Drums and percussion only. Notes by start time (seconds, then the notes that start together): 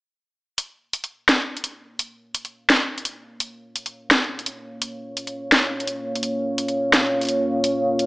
0.58 closed hi-hat
0.93 closed hi-hat
1.04 closed hi-hat
1.29 snare, closed hi-hat
1.57 closed hi-hat
1.64 closed hi-hat
1.99 closed hi-hat
2.35 closed hi-hat
2.45 closed hi-hat
2.70 snare, closed hi-hat
2.98 closed hi-hat
3.05 closed hi-hat
3.40 closed hi-hat
3.76 closed hi-hat
3.86 closed hi-hat
4.11 snare, closed hi-hat
4.39 closed hi-hat
4.46 closed hi-hat
4.82 closed hi-hat
5.17 closed hi-hat
5.27 closed hi-hat
5.52 snare, closed hi-hat
5.80 closed hi-hat
5.87 closed hi-hat
6.15 closed hi-hat
6.23 closed hi-hat
6.58 closed hi-hat
6.68 closed hi-hat
6.93 snare, closed hi-hat
7.21 closed hi-hat
7.23 closed hi-hat
7.25 closed hi-hat
7.27 closed hi-hat
7.29 closed hi-hat
7.64 closed hi-hat
7.99 closed hi-hat